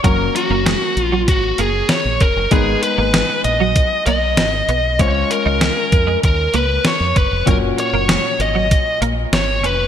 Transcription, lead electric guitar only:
0.04 0.33 A#4 medium
0.36 1.00 F#4 medium
1.00 1.28 F4 medium
1.29 1.61 F#4 medium
1.60 1.92 G#4 medium
1.90 2.22 C#5 medium
2.21 2.52 A#4 medium
2.52 2.83 G#4 medium
2.83 3.41 B4 medium
3.45 4.03 D#5 loud
4.07 5.00 D#5 loud
5.01 5.32 C#5 medium
5.31 6.19 A#4 medium
6.25 6.53 A#4 medium
6.55 6.87 B4 medium
6.87 7.15 C#5 medium
7.17 7.45 B4 medium
7.48 7.56 A#4 medium
7.80 8.41 C#5 medium
8.41 8.98 D#5 medium
9.34 9.65 C#5 medium
9.66 9.88 B4 medium

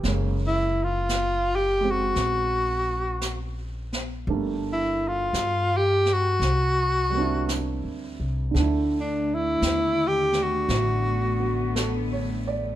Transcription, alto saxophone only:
0.47 0.85 E4 medium
0.84 1.57 F4 medium
1.55 1.92 G4 medium
1.91 3.51 F#4 medium
4.73 5.09 E4 medium
5.08 5.79 F4 medium
5.77 6.15 G4 medium
6.13 7.77 F#4 medium
9.00 9.36 D4 medium
9.34 10.09 E4 medium
10.08 10.44 G4 medium
10.43 12.04 F#4 medium

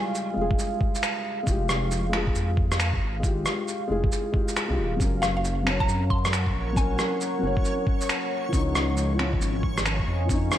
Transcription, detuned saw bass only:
0.37 0.58 F1 loud
1.47 2.12 F1 loud
2.13 2.34 F1 medium
2.35 3.00 F2 loud
3.01 3.44 G#1 medium
3.90 4.11 F1 loud
4.70 4.79 C2 loud
4.78 4.99 D#1 loud
5.00 5.65 F#1 loud
5.66 5.87 F#1 medium
5.88 6.53 F#2 loud
6.54 6.98 A#1 medium
7.43 7.64 F#1 medium
8.53 9.18 C#2 loud
9.19 9.40 C#2 loud
9.41 10.06 G#1 loud
10.07 10.50 F2 medium

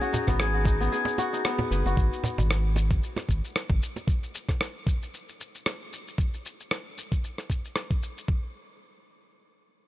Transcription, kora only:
0.00 0.27 B3 medium
0.00 1.49 C#4 medium
0.00 0.19 E4 medium
0.00 0.54 F#4 medium
0.00 0.39 G#4 loud
0.13 0.66 D#4 medium
0.28 0.80 B3 medium
0.39 0.92 G#4 loud
0.54 1.18 F#4 medium
0.66 1.33 D#4 medium
0.80 1.44 B3 medium
0.92 2.29 G#4 loud
1.18 1.85 F#4 medium
1.33 2.95 D#4 medium
1.45 3.31 B3 medium
1.71 2.94 B4 medium
1.86 3.32 F#4 medium

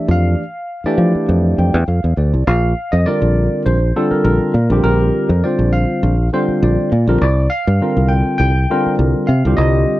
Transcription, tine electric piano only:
0.00 0.42 E3 medium
0.00 0.42 A3 medium
0.00 0.42 D4 medium
0.00 0.42 G4 medium
0.00 0.43 D5 medium
0.11 1.85 F5 medium
0.85 1.77 E3 medium
0.85 1.77 A3 medium
0.85 1.77 D4 medium
0.85 1.77 G4 medium
0.85 1.77 D5 medium
1.59 1.86 G5 medium
1.88 2.16 F5 medium
2.18 2.45 D5 medium
2.47 2.94 F5 loud
2.92 3.07 D#5 medium
3.06 3.76 D3 medium
3.06 3.76 G3 medium
3.06 3.76 C4 medium
3.06 3.76 F4 medium
3.06 3.76 A#4 medium
3.06 3.62 D5 medium
3.66 4.13 C5 medium
3.96 4.53 D3 medium
3.96 4.54 G3 medium
3.96 4.53 C4 medium
3.96 4.53 F4 medium
3.96 4.54 A4 medium
4.11 4.23 A#4 medium
4.24 4.82 A#4 medium
4.71 5.28 D3 medium
4.71 5.29 G3 medium
4.71 5.29 C4 medium
4.71 5.28 F4 medium
4.71 5.29 G4 medium
4.84 5.45 A#4 medium
5.44 6.13 D3 medium
5.44 6.13 G3 medium
5.44 6.13 C4 medium
5.44 6.14 F4 medium
5.44 6.14 C5 medium
5.44 5.71 D5 medium
5.73 6.28 F5 medium
6.33 6.90 D3 medium
6.33 6.91 G3 medium
6.33 6.91 C4 medium
6.33 6.91 F4 medium
6.33 6.91 C5 medium
6.64 7.20 D5 medium
7.09 7.22 D3 medium
7.09 7.22 G3 medium
7.09 7.22 C4 medium
7.09 7.22 F4 medium
7.09 7.22 A#4 medium
7.22 7.49 D5 medium
7.50 8.12 F5 medium
7.81 8.50 D3 medium
7.81 8.51 G3 medium
7.81 8.51 C4 medium
7.81 8.51 F4 medium
7.81 8.51 A#4 medium
8.08 8.37 G5 medium
8.38 8.94 G5 medium
8.70 9.27 D3 medium
8.70 9.28 G3 medium
8.70 9.28 C4 medium
8.70 9.28 F4 medium
8.70 9.28 A#4 medium
9.27 9.58 F5 medium
9.46 10.00 D3 medium
9.46 10.00 G3 medium
9.46 10.00 C4 medium
9.46 10.00 F4 medium
9.46 10.00 G4 medium
9.57 10.00 D#5 loud

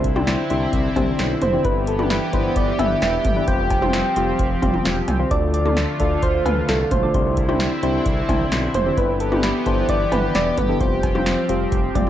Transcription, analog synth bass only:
0.00 0.36 C2 loud
0.50 0.66 C2 loud
0.73 0.89 C2 loud
0.96 1.12 C2 loud
1.19 1.35 B1 loud
1.42 1.58 F1 medium
1.65 2.19 G1 loud
2.33 2.49 G1 loud
2.56 2.72 G1 loud
2.79 2.95 G1 loud
3.02 3.18 E1 loud
3.25 3.41 G1 medium
3.48 4.02 F1 loud
4.17 4.33 F1 loud
4.39 4.55 F1 loud
4.63 4.79 F1 loud
4.85 5.01 E1 loud
5.08 5.24 C2 medium
5.31 5.85 D2 loud
6.00 6.16 D2 loud
6.23 6.39 D2 loud
6.46 6.62 D2 loud
6.69 6.85 C2 loud
6.91 7.07 B1 loud
7.14 7.69 C2 loud
7.83 7.99 C2 loud
8.06 8.22 C2 loud
8.29 8.45 C2 loud
8.52 8.68 B1 loud
8.75 8.91 F1 loud
8.97 9.52 G1 loud
9.66 9.82 G1 loud
9.89 10.05 G1 loud
10.12 10.28 G1 loud
10.35 10.51 E1 loud
10.58 10.74 G1 medium
10.81 11.35 F1 loud
11.49 11.65 F1 loud
11.72 11.88 F1 loud
11.95 12.10 F1 loud

